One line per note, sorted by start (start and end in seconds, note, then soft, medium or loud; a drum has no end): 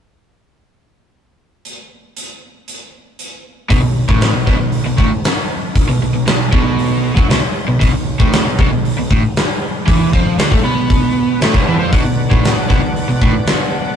1.65 closed hi-hat medium
2.17 closed hi-hat medium
2.68 closed hi-hat medium
3.19 closed hi-hat medium
3.70 3.82 B1 medium
3.70 3.82 B2 loud
3.70 kick loud
3.70 open hi-hat medium
3.83 4.07 B1 medium
3.83 4.04 B2 medium
4.09 4.33 A1 loud
4.09 4.34 A2 medium
4.09 kick loud
4.21 snare loud
4.21 open hi-hat medium
4.34 4.46 B1 medium
4.34 4.47 B2 medium
4.47 4.59 B1 medium
4.47 4.58 B2 loud
4.47 kick medium
4.47 snare soft
4.60 4.84 B1 medium
4.60 4.80 B2 medium
4.72 open hi-hat medium
4.86 4.97 B1 medium
4.86 4.98 B2 medium
4.98 5.10 A1 medium
4.98 5.10 A2 loud
4.98 kick loud
5.24 snare loud
5.24 open hi-hat medium
5.75 kick loud
5.75 open hi-hat medium
5.89 6.01 B1 medium
5.89 6.01 B2 medium
6.02 6.13 B1 medium
6.02 6.13 B2 medium
6.14 6.27 B1 medium
6.14 6.25 B2 medium
6.27 6.51 B1 medium
6.27 6.47 B2 medium
6.27 snare loud
6.27 open hi-hat medium
6.52 7.13 B1 medium
6.52 7.15 B2 loud
6.52 kick loud
6.79 open hi-hat medium
7.16 7.29 F#2 medium
7.16 7.28 F#3 loud
7.16 kick loud
7.30 7.42 B1 medium
7.30 7.41 B2 medium
7.30 snare loud
7.30 open hi-hat medium
7.42 muted overdriven electric guitar stroke medium
7.42 muted picked electric bass stroke soft
7.67 7.80 B1 medium
7.67 7.79 B2 medium
7.80 7.92 B1 medium
7.80 7.92 B2 loud
7.80 kick loud
7.80 open hi-hat medium
7.93 8.17 B1 medium
7.93 8.15 B2 medium
8.20 8.44 A1 medium
8.20 8.45 A2 medium
8.20 kick loud
8.33 snare loud
8.33 open hi-hat medium
8.46 8.57 B1 medium
8.46 8.58 B2 medium
8.59 8.70 B1 medium
8.59 8.71 B2 medium
8.59 kick loud
8.70 8.94 B1 medium
8.70 8.92 B2 medium
8.85 open hi-hat medium
8.97 9.09 B1 medium
8.97 9.10 B2 medium
9.11 9.22 A1 medium
9.11 9.22 A2 loud
9.11 kick loud
9.36 snare loud
9.36 open hi-hat medium
9.87 10.11 E2 loud
9.87 10.12 E3 loud
9.87 kick loud
9.87 open hi-hat medium
10.13 10.37 F2 medium
10.13 10.38 F3 loud
10.13 kick medium
10.39 10.51 D2 medium
10.39 10.51 D3 loud
10.39 snare loud
10.39 open hi-hat medium
10.51 10.63 A2 medium
10.51 10.63 A3 medium
10.51 kick loud
10.64 11.38 B2 medium
10.64 11.40 B3 medium
10.90 kick loud
10.90 open hi-hat soft
11.41 11.53 A2 medium
11.41 11.54 A3 medium
11.41 snare loud
11.41 open hi-hat soft
11.53 11.66 B1 medium
11.53 11.66 B2 loud
11.53 kick medium
11.60 11.82 B3 medium
11.60 11.84 C4 medium
11.65 11.79 E2 loud
11.65 11.79 E3 medium
11.65 11.85 D4 medium
11.65 11.87 E4 medium
11.71 11.88 F4 medium
11.71 11.89 G4 medium
11.76 11.92 F2 medium
11.76 11.92 F3 medium
11.76 11.91 A4 medium
11.76 11.92 B4 medium
11.82 11.93 C5 medium
11.82 11.92 D5 medium
11.88 11.97 E5 medium
11.88 11.98 F5 medium
11.92 12.04 B1 medium
11.92 12.04 B2 loud
11.92 13.96 B3 medium
11.92 13.96 D4 medium
11.92 13.96 F#4 medium
11.92 13.96 D5 medium
11.92 kick loud
11.92 open hi-hat medium
12.05 12.29 B1 medium
12.05 12.26 B2 medium
12.30 12.55 A1 medium
12.30 12.56 A2 medium
12.30 kick loud
12.44 snare loud
12.44 open hi-hat medium
12.56 12.68 B1 medium
12.56 12.68 B2 medium
12.69 12.82 B1 medium
12.69 12.82 B2 loud
12.69 kick loud
12.69 snare soft
12.82 13.06 B1 medium
12.82 13.04 B2 medium
12.96 open hi-hat medium
13.09 13.20 B1 medium
13.09 13.22 B2 medium
13.22 13.34 A1 medium
13.22 13.34 A2 medium
13.22 kick loud
13.47 snare loud
13.47 open hi-hat medium